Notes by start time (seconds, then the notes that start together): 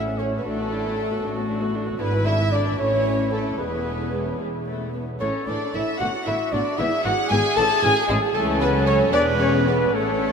Already playing: A1 A2 C#4 E5
0.06 C#4 A4
0.18 A3 C#4 E4 C#5
0.32 C#4 A4
0.38 B4
0.44 A1 A2 A3 D4 F#4 A4
0.57 B3 F#4
0.71 A3 D4 E4
0.83 B3 F#4
0.96 A3 D4
1.10 B3 F#4
1.22 A1 A2 A3 D4 F#4
1.34 B3 F#4
1.47 A3 D4
1.61 B3 F#4
1.73 A3 D4
1.87 B3 F#4
1.99 G#1 G#2 D3 B3 D4 E4 B4
2.12 E3 E4
2.25 D3 D4 E4 E5
2.39 E3 E4
2.51 D3 D4 D5
2.66 E3 E4
2.78 A1 A2 A3 C#4 E4 C#5
2.92 E3 E4
3.05 A3 C#4
3.19 E3 E4
3.31 A3 C#4 A4
3.45 E3 E4
3.59 E1 E2 G#3 B3 G#4 B4
3.72 E3 B3
3.85 G#3
3.99 E3 B3
4.12 G#3
4.26 E3 B3
4.39 E1 E2 G#3
4.66 A3
4.94 B3
5.20 A1 A2 E3 A3 C#4 A4 C#5
5.47 A1 A2 E3 A3 D4 D5
5.73 A1 A2 E3 A3 E4 E5
5.99 A1 A2 D3 B3 F#4 F#5
6.26 A1 A2 D3 B3 E4 E5
6.52 A1 A2 D3 B3 D4 D5
6.78 G#1 G#2 E3 B3 E4 G#4 E5
7.04 G#1 G#2 E3 B3 F#4 F#5
7.30 G#1 G#2 E3 B3 G#4 G#5
7.56 A1 A2 E3 C#4 A4 A5
7.82 A1 A2 E3 C#4 G#4 G#5
8.08 A1 A2 E3 G#3 C#4 G#4
8.34 C#2 E3 A3 C#4 A4
8.60 B3 B4
8.74 F#3
8.86 C#4 C#5
9.13 E1 E2 G#3 B3 D4 B4 D5
9.39 C#4 C#5
9.67 B3 B4
9.94 A1 A2 A3 C#4 A4 C#5